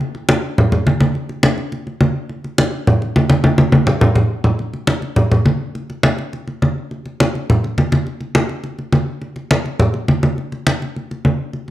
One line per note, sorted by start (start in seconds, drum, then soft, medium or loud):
0.01 high conga soft
0.15 high conga soft
0.29 high conga medium
0.58 high conga soft
0.58 low conga medium
0.72 high conga soft
0.72 low conga medium
0.87 high conga medium
1.00 high conga medium
1.15 high conga soft
1.29 high conga soft
1.43 high conga medium
1.58 high conga soft
1.72 high conga soft
1.87 high conga soft
2.01 high conga medium
2.29 high conga soft
2.44 high conga soft
2.58 high conga medium
2.87 high conga soft
2.87 low conga medium
3.02 high conga soft
3.16 high conga medium
3.30 high conga medium
3.44 high conga medium
3.58 high conga medium
3.72 high conga loud
3.87 low conga medium
4.01 low conga loud
4.16 low conga medium
4.44 low conga medium
4.59 high conga soft
4.73 high conga soft
4.87 high conga medium
5.02 high conga soft
5.16 high conga soft
5.16 low conga medium
5.32 high conga soft
5.32 low conga medium
5.46 high conga medium
5.75 high conga soft
5.90 high conga soft
6.03 high conga medium
6.18 high conga soft
6.33 high conga soft
6.48 high conga soft
6.62 high conga medium
6.91 high conga soft
7.06 high conga soft
7.20 high conga medium
7.35 high conga soft
7.50 high conga soft
7.50 low conga medium
7.64 high conga soft
7.78 high conga medium
7.92 high conga medium
8.07 high conga soft
8.21 high conga soft
8.35 high conga medium
8.49 high conga soft
8.64 high conga soft
8.79 high conga soft
8.92 high conga medium
9.22 high conga soft
9.36 high conga soft
9.51 high conga medium
9.66 high conga soft
9.79 high conga soft
9.79 low conga medium
9.94 high conga soft
10.08 high conga medium
10.23 high conga medium
10.38 high conga soft
10.52 high conga soft
10.67 high conga medium
10.82 high conga soft
10.96 high conga soft
11.11 high conga soft
11.25 high conga medium
11.53 high conga soft